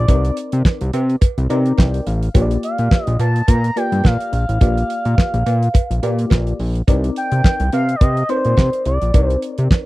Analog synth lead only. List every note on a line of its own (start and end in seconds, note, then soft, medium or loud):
0.00 0.37 D5 medium
2.64 3.05 F5 loud
3.05 3.16 D#5 loud
3.20 3.50 A5 loud
3.49 3.78 A#5 loud
3.77 4.07 G5 loud
4.05 4.33 F5 medium
4.34 6.56 F5 loud
7.17 7.69 G5 loud
7.74 7.97 F5 loud
7.96 8.03 D5 medium
8.02 8.29 D#5 loud
8.30 8.82 C5 loud
8.87 9.28 D5 medium
9.28 9.39 C5 medium